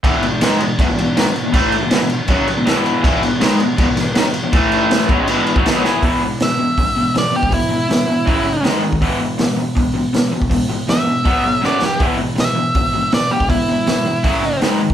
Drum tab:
CC |x-x-x-x-x-x-x-x-|x-x-x-x-x-x-x-x-|x-x-x-x-x-x-x-x-|x-x-x-x-x-x-x---|
HH |----------------|----------------|----------------|----------------|
SD |----o-------o---|----o-------o---|----o-----o-o---|----o-------o-o-|
BD |o-------o-------|o-------o-------|o-------o-------|o-----o----o----|

CC |----------------|----------------|----------------|----------------|
HH |o---o---o---o---|o---o---o---o---|o---o---o---o---|o---o---o-------|
SD |----o-------o---|----o-------o---|----o-------o---|----o-------o-o-|
BD |o-------o------o|o-------o------o|o-------o------o|o-------o-------|

CC |----------------|----------------|
HH |o---o---o---o---|o---o---o---o---|
SD |----o-------o---|----o-------o---|
BD |o-------o------o|o-------o------o|